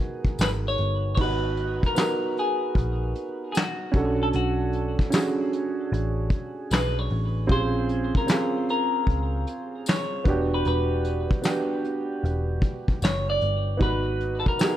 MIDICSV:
0, 0, Header, 1, 5, 480
1, 0, Start_track
1, 0, Tempo, 789474
1, 714, Time_signature, 4, 2, 24, 8
1, 8979, End_track
2, 0, Start_track
2, 0, Title_t, "Clean electric guitar"
2, 0, Program_c, 0, 27
2, 256, Note_on_c, 0, 71, 98
2, 295, Note_off_c, 0, 71, 0
2, 414, Note_on_c, 0, 73, 103
2, 693, Note_off_c, 0, 73, 0
2, 700, Note_on_c, 0, 73, 77
2, 722, Note_off_c, 0, 73, 0
2, 736, Note_on_c, 0, 71, 105
2, 1131, Note_off_c, 0, 71, 0
2, 1134, Note_on_c, 0, 70, 100
2, 1452, Note_off_c, 0, 70, 0
2, 1455, Note_on_c, 0, 68, 97
2, 2135, Note_off_c, 0, 68, 0
2, 2142, Note_on_c, 0, 68, 62
2, 2163, Note_off_c, 0, 68, 0
2, 2171, Note_on_c, 0, 66, 75
2, 2571, Note_on_c, 0, 69, 80
2, 2573, Note_off_c, 0, 66, 0
2, 2601, Note_off_c, 0, 69, 0
2, 2649, Note_on_c, 0, 66, 79
2, 3337, Note_off_c, 0, 66, 0
2, 4090, Note_on_c, 0, 71, 100
2, 4248, Note_off_c, 0, 71, 0
2, 4248, Note_on_c, 0, 73, 101
2, 4567, Note_off_c, 0, 73, 0
2, 4570, Note_on_c, 0, 72, 112
2, 4966, Note_off_c, 0, 72, 0
2, 4969, Note_on_c, 0, 70, 92
2, 5285, Note_off_c, 0, 70, 0
2, 5292, Note_on_c, 0, 70, 100
2, 6009, Note_off_c, 0, 70, 0
2, 6011, Note_on_c, 0, 73, 89
2, 6408, Note_off_c, 0, 73, 0
2, 6410, Note_on_c, 0, 71, 80
2, 6484, Note_off_c, 0, 71, 0
2, 6491, Note_on_c, 0, 71, 94
2, 7178, Note_off_c, 0, 71, 0
2, 7928, Note_on_c, 0, 73, 94
2, 8083, Note_off_c, 0, 73, 0
2, 8085, Note_on_c, 0, 74, 104
2, 8402, Note_off_c, 0, 74, 0
2, 8405, Note_on_c, 0, 71, 105
2, 8751, Note_off_c, 0, 71, 0
2, 8753, Note_on_c, 0, 69, 68
2, 8801, Note_off_c, 0, 69, 0
2, 8805, Note_on_c, 0, 70, 95
2, 8979, Note_off_c, 0, 70, 0
2, 8979, End_track
3, 0, Start_track
3, 0, Title_t, "Upright piano"
3, 0, Program_c, 1, 0
3, 0, Control_c, 1, 64, 127
3, 0, Note_on_c, 1, 59, 71
3, 0, Note_on_c, 1, 63, 62
3, 0, Note_on_c, 1, 66, 68
3, 0, Note_on_c, 1, 68, 79
3, 713, Note_off_c, 1, 59, 0
3, 713, Note_on_c, 1, 59, 71
3, 721, Note_off_c, 1, 63, 0
3, 721, Note_on_c, 1, 63, 75
3, 722, Control_c, 1, 64, 0
3, 725, Note_off_c, 1, 68, 0
3, 726, Note_off_c, 1, 66, 0
3, 732, Note_on_c, 1, 66, 74
3, 739, Note_on_c, 1, 71, 81
3, 813, Control_c, 1, 64, 127
3, 1122, Note_off_c, 1, 59, 0
3, 1126, Note_off_c, 1, 63, 0
3, 1131, Note_off_c, 1, 66, 0
3, 1135, Note_off_c, 1, 71, 0
3, 1186, Note_on_c, 1, 59, 71
3, 1195, Note_on_c, 1, 63, 54
3, 1205, Note_on_c, 1, 66, 63
3, 1215, Note_on_c, 1, 70, 71
3, 1948, Note_off_c, 1, 59, 0
3, 1953, Note_off_c, 1, 63, 0
3, 1958, Note_off_c, 1, 66, 0
3, 1963, Note_off_c, 1, 70, 0
3, 2381, Note_on_c, 1, 61, 78
3, 2388, Note_on_c, 1, 62, 66
3, 2398, Note_on_c, 1, 66, 64
3, 2403, Control_c, 1, 64, 0
3, 2406, Note_on_c, 1, 69, 88
3, 2498, Control_c, 1, 64, 127
3, 2994, Note_off_c, 1, 61, 0
3, 2998, Note_off_c, 1, 62, 0
3, 3003, Note_off_c, 1, 66, 0
3, 3007, Note_off_c, 1, 69, 0
3, 3102, Note_on_c, 1, 61, 76
3, 3110, Note_on_c, 1, 62, 57
3, 3119, Note_on_c, 1, 66, 64
3, 3128, Note_on_c, 1, 68, 69
3, 3866, Note_off_c, 1, 61, 0
3, 3870, Note_off_c, 1, 62, 0
3, 3875, Note_off_c, 1, 66, 0
3, 3879, Note_off_c, 1, 68, 0
3, 4543, Note_on_c, 1, 60, 76
3, 4551, Note_on_c, 1, 61, 74
3, 4561, Control_c, 1, 64, 0
3, 4561, Note_on_c, 1, 65, 70
3, 4570, Note_on_c, 1, 68, 79
3, 4683, Control_c, 1, 64, 127
3, 4957, Note_off_c, 1, 60, 0
3, 4961, Note_off_c, 1, 61, 0
3, 4966, Note_off_c, 1, 65, 0
3, 4970, Note_off_c, 1, 68, 0
3, 5027, Note_on_c, 1, 60, 64
3, 5034, Note_on_c, 1, 61, 57
3, 5043, Note_on_c, 1, 65, 66
3, 5054, Note_on_c, 1, 68, 75
3, 5789, Note_off_c, 1, 60, 0
3, 5792, Note_off_c, 1, 61, 0
3, 5797, Note_off_c, 1, 65, 0
3, 5802, Note_off_c, 1, 68, 0
3, 6228, Note_on_c, 1, 59, 78
3, 6239, Note_on_c, 1, 62, 74
3, 6241, Control_c, 1, 64, 0
3, 6247, Note_on_c, 1, 66, 68
3, 6256, Note_on_c, 1, 67, 81
3, 6329, Control_c, 1, 64, 127
3, 6838, Note_off_c, 1, 59, 0
3, 6843, Note_off_c, 1, 62, 0
3, 6847, Note_off_c, 1, 66, 0
3, 6852, Note_off_c, 1, 67, 0
3, 6941, Note_on_c, 1, 59, 61
3, 6951, Note_on_c, 1, 62, 60
3, 6959, Note_on_c, 1, 66, 62
3, 6968, Note_on_c, 1, 67, 84
3, 7706, Note_off_c, 1, 59, 0
3, 7711, Note_off_c, 1, 62, 0
3, 7715, Note_off_c, 1, 66, 0
3, 7719, Note_off_c, 1, 67, 0
3, 8373, Note_on_c, 1, 59, 70
3, 8382, Note_on_c, 1, 63, 70
3, 8392, Note_on_c, 1, 66, 74
3, 8401, Note_on_c, 1, 71, 79
3, 8403, Control_c, 1, 64, 0
3, 8512, Control_c, 1, 64, 127
3, 8792, Note_off_c, 1, 59, 0
3, 8796, Note_off_c, 1, 63, 0
3, 8801, Note_off_c, 1, 66, 0
3, 8806, Note_off_c, 1, 71, 0
3, 8871, Note_on_c, 1, 59, 64
3, 8877, Note_on_c, 1, 63, 63
3, 8887, Note_on_c, 1, 66, 60
3, 8896, Note_on_c, 1, 68, 71
3, 8979, Note_off_c, 1, 59, 0
3, 8979, Note_off_c, 1, 63, 0
3, 8979, Note_off_c, 1, 66, 0
3, 8979, Note_off_c, 1, 68, 0
3, 8979, End_track
4, 0, Start_track
4, 0, Title_t, "Picked electric bass"
4, 0, Program_c, 2, 34
4, 239, Note_on_c, 2, 32, 87
4, 461, Note_off_c, 2, 32, 0
4, 480, Note_on_c, 2, 31, 80
4, 701, Note_off_c, 2, 31, 0
4, 718, Note_on_c, 2, 32, 112
4, 1090, Note_off_c, 2, 32, 0
4, 1676, Note_on_c, 2, 34, 97
4, 1900, Note_off_c, 2, 34, 0
4, 2397, Note_on_c, 2, 35, 85
4, 2620, Note_off_c, 2, 35, 0
4, 2641, Note_on_c, 2, 35, 99
4, 3012, Note_off_c, 2, 35, 0
4, 3600, Note_on_c, 2, 33, 104
4, 3822, Note_off_c, 2, 33, 0
4, 4081, Note_on_c, 2, 35, 82
4, 4302, Note_off_c, 2, 35, 0
4, 4323, Note_on_c, 2, 33, 88
4, 4543, Note_off_c, 2, 33, 0
4, 4559, Note_on_c, 2, 34, 116
4, 4930, Note_off_c, 2, 34, 0
4, 5517, Note_on_c, 2, 37, 82
4, 5740, Note_off_c, 2, 37, 0
4, 6238, Note_on_c, 2, 28, 99
4, 6460, Note_off_c, 2, 28, 0
4, 6482, Note_on_c, 2, 28, 102
4, 6852, Note_off_c, 2, 28, 0
4, 7440, Note_on_c, 2, 28, 95
4, 7661, Note_off_c, 2, 28, 0
4, 7918, Note_on_c, 2, 30, 105
4, 8141, Note_off_c, 2, 30, 0
4, 8160, Note_on_c, 2, 31, 83
4, 8381, Note_off_c, 2, 31, 0
4, 8397, Note_on_c, 2, 32, 108
4, 8770, Note_off_c, 2, 32, 0
4, 8979, End_track
5, 0, Start_track
5, 0, Title_t, "Drums"
5, 149, Note_on_c, 9, 36, 86
5, 210, Note_off_c, 9, 36, 0
5, 233, Note_on_c, 9, 42, 88
5, 236, Note_on_c, 9, 54, 67
5, 249, Note_on_c, 9, 38, 120
5, 254, Note_on_c, 9, 39, 89
5, 294, Note_off_c, 9, 42, 0
5, 296, Note_off_c, 9, 54, 0
5, 310, Note_off_c, 9, 38, 0
5, 314, Note_off_c, 9, 39, 0
5, 472, Note_on_c, 9, 42, 57
5, 532, Note_off_c, 9, 42, 0
5, 713, Note_on_c, 9, 49, 94
5, 714, Note_on_c, 9, 36, 124
5, 773, Note_off_c, 9, 49, 0
5, 775, Note_off_c, 9, 36, 0
5, 955, Note_on_c, 9, 42, 59
5, 1015, Note_off_c, 9, 42, 0
5, 1113, Note_on_c, 9, 36, 98
5, 1117, Note_on_c, 9, 38, 37
5, 1174, Note_off_c, 9, 36, 0
5, 1178, Note_off_c, 9, 38, 0
5, 1193, Note_on_c, 9, 54, 67
5, 1202, Note_on_c, 9, 38, 104
5, 1206, Note_on_c, 9, 39, 82
5, 1254, Note_off_c, 9, 54, 0
5, 1263, Note_off_c, 9, 38, 0
5, 1267, Note_off_c, 9, 39, 0
5, 1441, Note_on_c, 9, 42, 68
5, 1502, Note_off_c, 9, 42, 0
5, 1673, Note_on_c, 9, 36, 73
5, 1689, Note_on_c, 9, 42, 75
5, 1734, Note_off_c, 9, 36, 0
5, 1750, Note_off_c, 9, 42, 0
5, 1918, Note_on_c, 9, 42, 63
5, 1978, Note_off_c, 9, 42, 0
5, 2155, Note_on_c, 9, 42, 88
5, 2158, Note_on_c, 9, 54, 63
5, 2171, Note_on_c, 9, 38, 114
5, 2176, Note_on_c, 9, 39, 87
5, 2216, Note_off_c, 9, 42, 0
5, 2219, Note_off_c, 9, 54, 0
5, 2232, Note_off_c, 9, 38, 0
5, 2237, Note_off_c, 9, 39, 0
5, 2394, Note_on_c, 9, 36, 105
5, 2394, Note_on_c, 9, 42, 59
5, 2454, Note_off_c, 9, 42, 0
5, 2455, Note_off_c, 9, 36, 0
5, 2633, Note_on_c, 9, 42, 87
5, 2693, Note_off_c, 9, 42, 0
5, 2876, Note_on_c, 9, 42, 62
5, 2937, Note_off_c, 9, 42, 0
5, 3034, Note_on_c, 9, 36, 94
5, 3038, Note_on_c, 9, 38, 34
5, 3095, Note_off_c, 9, 36, 0
5, 3099, Note_off_c, 9, 38, 0
5, 3114, Note_on_c, 9, 54, 70
5, 3123, Note_on_c, 9, 38, 105
5, 3128, Note_on_c, 9, 39, 83
5, 3174, Note_off_c, 9, 54, 0
5, 3184, Note_off_c, 9, 38, 0
5, 3189, Note_off_c, 9, 39, 0
5, 3363, Note_on_c, 9, 42, 72
5, 3424, Note_off_c, 9, 42, 0
5, 3609, Note_on_c, 9, 42, 78
5, 3670, Note_off_c, 9, 42, 0
5, 3832, Note_on_c, 9, 36, 97
5, 3839, Note_on_c, 9, 42, 67
5, 3893, Note_off_c, 9, 36, 0
5, 3900, Note_off_c, 9, 42, 0
5, 4077, Note_on_c, 9, 42, 96
5, 4080, Note_on_c, 9, 54, 68
5, 4093, Note_on_c, 9, 38, 112
5, 4098, Note_on_c, 9, 39, 91
5, 4138, Note_off_c, 9, 42, 0
5, 4141, Note_off_c, 9, 54, 0
5, 4154, Note_off_c, 9, 38, 0
5, 4159, Note_off_c, 9, 39, 0
5, 4315, Note_on_c, 9, 46, 43
5, 4376, Note_off_c, 9, 46, 0
5, 4555, Note_on_c, 9, 42, 84
5, 4556, Note_on_c, 9, 36, 121
5, 4616, Note_off_c, 9, 42, 0
5, 4617, Note_off_c, 9, 36, 0
5, 4797, Note_on_c, 9, 42, 67
5, 4858, Note_off_c, 9, 42, 0
5, 4954, Note_on_c, 9, 36, 105
5, 5015, Note_off_c, 9, 36, 0
5, 5034, Note_on_c, 9, 54, 68
5, 5043, Note_on_c, 9, 38, 106
5, 5048, Note_on_c, 9, 39, 81
5, 5095, Note_off_c, 9, 54, 0
5, 5104, Note_off_c, 9, 38, 0
5, 5109, Note_off_c, 9, 39, 0
5, 5283, Note_on_c, 9, 42, 63
5, 5344, Note_off_c, 9, 42, 0
5, 5514, Note_on_c, 9, 36, 81
5, 5531, Note_on_c, 9, 42, 78
5, 5575, Note_off_c, 9, 36, 0
5, 5592, Note_off_c, 9, 42, 0
5, 5758, Note_on_c, 9, 42, 71
5, 5819, Note_off_c, 9, 42, 0
5, 5996, Note_on_c, 9, 54, 64
5, 5997, Note_on_c, 9, 42, 95
5, 6013, Note_on_c, 9, 38, 122
5, 6018, Note_on_c, 9, 39, 89
5, 6057, Note_off_c, 9, 54, 0
5, 6058, Note_off_c, 9, 42, 0
5, 6074, Note_off_c, 9, 38, 0
5, 6079, Note_off_c, 9, 39, 0
5, 6234, Note_on_c, 9, 42, 60
5, 6235, Note_on_c, 9, 36, 105
5, 6295, Note_off_c, 9, 42, 0
5, 6296, Note_off_c, 9, 36, 0
5, 6474, Note_on_c, 9, 42, 75
5, 6535, Note_off_c, 9, 42, 0
5, 6716, Note_on_c, 9, 42, 66
5, 6777, Note_off_c, 9, 42, 0
5, 6874, Note_on_c, 9, 36, 106
5, 6935, Note_off_c, 9, 36, 0
5, 6953, Note_on_c, 9, 54, 69
5, 6960, Note_on_c, 9, 42, 77
5, 6963, Note_on_c, 9, 38, 103
5, 6967, Note_on_c, 9, 39, 76
5, 7014, Note_off_c, 9, 54, 0
5, 7020, Note_off_c, 9, 42, 0
5, 7023, Note_off_c, 9, 38, 0
5, 7028, Note_off_c, 9, 39, 0
5, 7202, Note_on_c, 9, 42, 70
5, 7262, Note_off_c, 9, 42, 0
5, 7450, Note_on_c, 9, 42, 76
5, 7511, Note_off_c, 9, 42, 0
5, 7672, Note_on_c, 9, 36, 89
5, 7678, Note_on_c, 9, 42, 66
5, 7733, Note_off_c, 9, 36, 0
5, 7738, Note_off_c, 9, 42, 0
5, 7832, Note_on_c, 9, 36, 85
5, 7893, Note_off_c, 9, 36, 0
5, 7916, Note_on_c, 9, 42, 90
5, 7917, Note_on_c, 9, 54, 64
5, 7932, Note_on_c, 9, 38, 114
5, 7937, Note_on_c, 9, 39, 97
5, 7977, Note_off_c, 9, 42, 0
5, 7978, Note_off_c, 9, 54, 0
5, 7993, Note_off_c, 9, 38, 0
5, 7998, Note_off_c, 9, 39, 0
5, 8154, Note_on_c, 9, 42, 60
5, 8215, Note_off_c, 9, 42, 0
5, 8392, Note_on_c, 9, 42, 80
5, 8395, Note_on_c, 9, 36, 117
5, 8453, Note_off_c, 9, 42, 0
5, 8456, Note_off_c, 9, 36, 0
5, 8636, Note_on_c, 9, 42, 62
5, 8696, Note_off_c, 9, 42, 0
5, 8794, Note_on_c, 9, 36, 105
5, 8854, Note_off_c, 9, 36, 0
5, 8873, Note_on_c, 9, 54, 70
5, 8883, Note_on_c, 9, 38, 103
5, 8887, Note_on_c, 9, 39, 85
5, 8933, Note_off_c, 9, 54, 0
5, 8943, Note_off_c, 9, 38, 0
5, 8948, Note_off_c, 9, 39, 0
5, 8979, End_track
0, 0, End_of_file